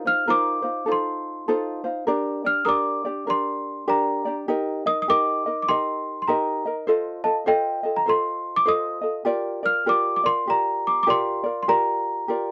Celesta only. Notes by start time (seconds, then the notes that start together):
0.07 F6
0.30 D6
0.92 C6
2.46 F6
2.65 D6 D#6
3.30 C6
3.90 A#5
4.87 D#6
5.02 D#6
5.10 D6
5.62 D6
5.68 C6
6.22 C6
6.28 A#5
7.24 A5
7.48 G5
7.96 A#5
8.09 C6
8.56 D6
8.69 D#6
9.66 F6
9.89 D6
10.16 D6
10.26 C6
10.50 A#5
10.87 D6
11.03 D6
11.10 C6
11.63 C6
11.69 A#5